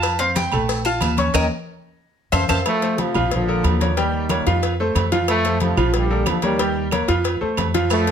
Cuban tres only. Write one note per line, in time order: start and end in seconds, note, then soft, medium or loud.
0.00 0.17 A5 loud
0.19 0.35 F5 loud
0.36 0.82 G5 medium
0.85 1.31 A5 medium
1.35 1.45 D#5 medium
1.35 1.45 G5 medium
1.35 1.45 A#5 medium
2.32 2.43 C5 loud
2.32 2.43 F5 medium
2.32 2.43 A5 medium
2.49 2.60 C5 medium
2.49 2.60 F5 loud
2.49 2.60 A5 medium